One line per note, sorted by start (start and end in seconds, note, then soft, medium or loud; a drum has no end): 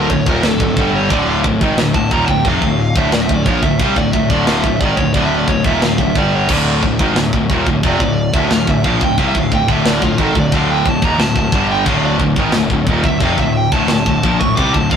0.00 0.10 D2 medium
0.00 0.10 A2 loud
0.00 0.11 D3 medium
0.10 0.26 D1 medium
0.10 0.26 D2 medium
0.10 0.27 A2 medium
0.10 0.26 C#5 loud
0.10 kick loud
0.26 0.42 D#1 loud
0.26 0.43 D#2 medium
0.26 0.43 A#2 loud
0.26 0.44 A#4 medium
0.26 kick loud
0.43 0.59 D1 medium
0.43 0.61 D2 medium
0.43 0.60 A2 medium
0.43 0.91 A4 medium
0.43 snare loud
0.43 china medium
0.60 0.76 D1 medium
0.60 0.78 D2 medium
0.60 0.78 A2 medium
0.60 kick medium
0.76 1.08 G1 loud
0.76 1.10 G2 medium
0.76 1.10 D3 loud
0.76 1.11 G3 loud
0.76 kick loud
0.95 1.11 C#5 medium
1.10 1.42 D1 loud
1.10 1.44 D2 loud
1.10 1.44 A2 medium
1.10 1.44 D3 loud
1.10 1.27 D5 medium
1.10 kick loud
1.10 china medium
1.28 1.38 F5 medium
1.44 1.61 D1 medium
1.44 1.61 D2 medium
1.44 1.62 A2 medium
1.44 kick loud
1.61 1.77 G#1 loud
1.61 1.77 G#2 loud
1.61 1.78 D#3 loud
1.61 kick loud
1.78 1.93 D1 medium
1.78 1.93 D2 medium
1.78 1.93 A2 medium
1.78 snare loud
1.78 china medium
1.94 2.10 D1 medium
1.94 2.11 D2 medium
1.94 2.12 A2 medium
1.94 2.11 A5 loud
1.94 kick medium
2.11 2.27 D#1 medium
2.11 2.28 D#2 loud
2.11 2.28 A#2 loud
2.11 2.29 A#5 loud
2.11 kick loud
2.28 2.44 D1 medium
2.28 2.46 D2 medium
2.28 2.46 A2 medium
2.28 2.45 G5 medium
2.28 kick medium
2.45 2.61 F1 medium
2.45 2.62 F2 medium
2.45 2.63 C3 loud
2.45 2.94 F5 loud
2.45 kick loud
2.45 china medium
2.62 2.93 D1 medium
2.62 2.90 D2 medium
2.62 2.90 A2 medium
2.62 kick medium
2.95 3.11 D1 loud
2.95 3.13 D2 loud
2.95 3.13 A2 loud
2.95 3.11 E5 medium
2.95 kick loud
3.12 3.29 D1 medium
3.12 3.31 D2 medium
3.12 3.31 A2 medium
3.12 3.23 D5 medium
3.12 snare loud
3.12 china medium
3.23 3.34 E5 medium
3.29 3.45 D1 medium
3.29 3.48 D2 medium
3.29 3.48 A2 medium
3.29 kick loud
3.34 3.46 D5 loud
3.44 3.62 A#1 loud
3.44 3.62 C#5 loud
3.44 kick loud
3.49 3.63 A#2 loud
3.49 3.64 F3 loud
3.62 3.79 D1 medium
3.62 3.81 D2 medium
3.62 3.81 A2 medium
3.62 3.80 E5 medium
3.62 kick loud
3.79 3.95 C2 loud
3.79 3.97 C3 medium
3.79 3.97 G3 medium
3.79 3.96 F5 loud
3.79 kick loud
3.79 china medium
3.96 4.12 D1 medium
3.96 4.13 D2 medium
3.96 4.14 A2 medium
3.96 4.12 D5 medium
3.96 kick loud
4.12 4.29 D1 medium
4.12 4.31 D2 medium
4.12 4.31 A2 medium
4.12 4.29 E5 loud
4.12 kick medium
4.29 4.61 D1 medium
4.29 4.64 D2 loud
4.29 4.64 A2 medium
4.29 4.64 D3 loud
4.29 4.46 D5 medium
4.29 kick loud
4.47 4.61 F5 loud
4.47 snare loud
4.47 china medium
4.62 4.80 D1 medium
4.62 4.79 E5 medium
4.62 kick loud
4.66 4.82 D2 medium
4.66 4.82 A2 medium
4.80 4.97 G#1 loud
4.80 4.98 G#2 medium
4.80 4.98 D#3 loud
4.80 4.96 D5 loud
4.80 kick loud
4.96 5.13 D1 medium
4.96 5.15 D2 medium
4.96 5.16 A2 medium
4.96 5.13 C#5 medium
4.96 kick medium
5.14 5.46 D1 loud
5.14 5.48 D2 medium
5.14 5.49 A2 medium
5.14 5.25 D5 medium
5.14 kick loud
5.14 china medium
5.19 5.49 D3 medium
5.26 5.37 E5 loud
5.37 5.48 D5 loud
5.47 5.63 D1 medium
5.47 5.64 C#5 medium
5.47 kick medium
5.51 5.67 D2 medium
5.51 5.67 A2 medium
5.64 5.79 D#1 medium
5.64 5.82 D#2 loud
5.64 5.81 E5 medium
5.64 kick loud
5.68 5.82 A#2 loud
5.80 5.96 D1 medium
5.80 snare loud
5.80 china medium
5.84 5.99 D2 medium
5.84 5.99 A2 medium
5.84 5.99 F5 medium
5.98 6.14 D1 medium
5.98 6.16 D2 medium
5.98 6.16 A2 medium
5.98 6.15 E5 loud
5.98 kick medium
6.15 6.47 G1 medium
6.15 6.49 G2 medium
6.15 6.49 D3 medium
6.15 6.49 G3 loud
6.15 6.32 D5 loud
6.15 kick loud
6.35 6.50 C#5 medium
6.49 6.80 D1 medium
6.49 6.81 D2 medium
6.49 6.82 A2 loud
6.49 6.82 D3 medium
6.49 kick loud
6.49 crash loud
6.49 china medium
6.53 6.72 D5 medium
6.82 6.98 D1 medium
6.82 7.00 D2 medium
6.82 7.00 A2 medium
6.82 kick medium
6.99 7.14 G#1 loud
6.99 7.15 G#2 medium
6.99 7.16 D#3 loud
6.99 kick loud
7.15 7.31 D1 medium
7.15 7.33 D2 medium
7.15 7.33 A2 medium
7.15 snare loud
7.15 china medium
7.33 7.48 D1 medium
7.33 7.51 D2 medium
7.33 7.51 A2 medium
7.33 kick medium
7.49 7.65 D#1 medium
7.49 7.66 D#2 medium
7.49 7.67 A#2 medium
7.49 kick loud
7.66 7.82 D1 medium
7.66 7.84 D2 medium
7.66 7.85 A2 medium
7.66 kick medium
7.83 7.99 F1 medium
7.83 7.99 F2 medium
7.83 8.00 C3 medium
7.83 8.32 D5 medium
7.83 kick loud
7.83 china medium
8.00 8.31 D1 medium
8.00 8.28 D2 medium
8.00 8.27 A2 medium
8.00 kick medium
8.33 8.49 D1 loud
8.33 8.50 D2 medium
8.33 8.50 A2 loud
8.33 8.50 E5 medium
8.33 kick loud
8.50 8.66 D1 medium
8.50 8.67 D2 medium
8.50 8.67 A2 medium
8.50 8.67 F5 loud
8.50 snare loud
8.50 china medium
8.67 8.83 D1 medium
8.67 8.85 D2 medium
8.67 8.85 A2 medium
8.67 8.84 E5 medium
8.67 kick loud
8.84 9.00 A#1 loud
8.84 9.00 A#2 loud
8.84 9.01 F3 loud
8.84 9.03 F5 loud
8.84 kick loud
9.01 9.17 D1 medium
9.01 9.18 D2 medium
9.01 9.18 A2 medium
9.01 9.18 G5 loud
9.01 kick loud
9.18 9.33 C2 loud
9.18 9.34 C3 loud
9.18 9.34 G3 loud
9.18 9.28 F5 medium
9.18 kick loud
9.18 china medium
9.28 9.42 E5 medium
9.35 9.50 D1 medium
9.35 9.52 D2 medium
9.35 9.52 A2 medium
9.35 kick loud
9.42 9.52 F5 loud
9.52 9.67 D1 medium
9.52 9.69 D2 medium
9.52 9.69 A2 medium
9.52 9.69 G5 loud
9.52 kick loud
9.68 10.00 D1 loud
9.68 10.02 D2 loud
9.68 10.02 A2 loud
9.68 9.86 E5 medium
9.68 kick loud
9.72 10.03 D3 loud
9.85 10.02 D5 loud
9.85 snare loud
9.85 china medium
10.02 10.17 D1 medium
10.02 10.19 D2 medium
10.02 10.20 A2 medium
10.02 10.18 F4 medium
10.02 kick medium
10.18 10.34 G#1 medium
10.18 10.35 G#2 medium
10.18 10.36 D#3 medium
10.18 10.37 A4 loud
10.18 kick medium
10.35 10.51 D1 medium
10.35 10.51 D2 medium
10.35 10.52 A2 medium
10.35 kick medium
10.39 10.54 D5 medium
10.52 10.83 D1 medium
10.52 10.83 D2 medium
10.52 10.84 A2 loud
10.52 10.85 D3 loud
10.52 10.70 F5 loud
10.52 kick loud
10.52 china medium
10.71 10.86 G5 loud
10.84 11.01 D1 medium
10.84 11.02 D2 medium
10.84 11.02 A2 medium
10.84 kick loud
10.89 11.06 A5 loud
11.02 11.18 D#1 loud
11.02 11.18 D#2 medium
11.02 11.19 A#2 loud
11.02 11.19 A#5 loud
11.02 kick loud
11.19 11.35 D1 medium
11.19 11.36 D2 medium
11.19 11.36 A2 medium
11.19 11.67 A5 medium
11.19 snare loud
11.19 china medium
11.36 11.52 D1 medium
11.36 11.53 D2 medium
11.36 11.54 A2 medium
11.36 kick medium
11.52 11.84 G1 loud
11.52 11.85 G2 loud
11.52 11.85 D3 loud
11.52 11.86 G3 loud
11.52 kick loud
11.71 11.87 G5 loud
11.85 12.18 D1 loud
11.85 12.19 D2 medium
11.85 12.19 A2 loud
11.85 12.20 D3 loud
11.85 12.03 F5 loud
11.85 kick loud
11.85 china medium
12.05 12.15 D5 medium
12.19 12.35 D1 medium
12.19 12.37 D2 medium
12.19 12.38 A2 medium
12.19 kick medium
12.36 12.53 G#1 medium
12.36 12.53 G#2 loud
12.36 12.54 D#3 loud
12.36 kick medium
12.52 12.69 D1 medium
12.52 12.70 D2 medium
12.52 12.71 A2 medium
12.52 snare loud
12.52 china medium
12.70 12.86 D1 medium
12.70 12.88 D2 medium
12.70 12.88 A2 medium
12.70 kick medium
12.87 13.03 D#1 medium
12.87 13.04 D#2 medium
12.87 13.05 A#2 loud
12.87 kick medium
13.03 13.20 D1 loud
13.03 13.21 D2 medium
13.03 13.22 A2 medium
13.03 13.21 E5 medium
13.03 kick medium
13.20 13.37 F1 medium
13.20 13.38 F2 medium
13.20 13.38 C3 medium
13.20 13.38 F5 loud
13.20 kick loud
13.20 china medium
13.38 13.70 D1 medium
13.38 13.67 D2 medium
13.38 13.67 A2 medium
13.38 13.56 E5 medium
13.38 kick medium
13.57 13.72 G5 loud
13.72 13.87 D1 medium
13.72 13.89 D2 loud
13.72 13.90 A2 loud
13.72 13.88 A5 loud
13.72 kick loud
13.88 14.04 D1 medium
13.88 14.06 D2 medium
13.88 14.06 A2 medium
13.88 14.36 A5 medium
13.88 snare loud
13.88 china medium
14.06 14.22 D1 medium
14.06 14.23 D2 medium
14.06 14.23 A2 medium
14.06 kick loud
14.23 14.39 A#1 loud
14.23 14.39 A#2 medium
14.23 14.39 F3 loud
14.23 kick loud
14.40 14.57 D1 medium
14.40 14.55 D2 medium
14.40 14.57 A2 medium
14.40 14.55 C#6 loud
14.40 kick loud
14.56 14.73 C2 medium
14.56 14.72 C3 medium
14.56 14.73 G3 loud
14.56 14.73 D6 loud
14.56 kick loud
14.56 china medium
14.73 14.90 D1 loud
14.73 14.90 D2 medium
14.73 14.90 A2 medium
14.73 14.90 A5 loud
14.73 kick loud
14.90 14.96 D1 medium
14.90 14.96 D2 medium
14.90 14.96 A2 medium
14.90 14.96 F5 medium
14.90 kick loud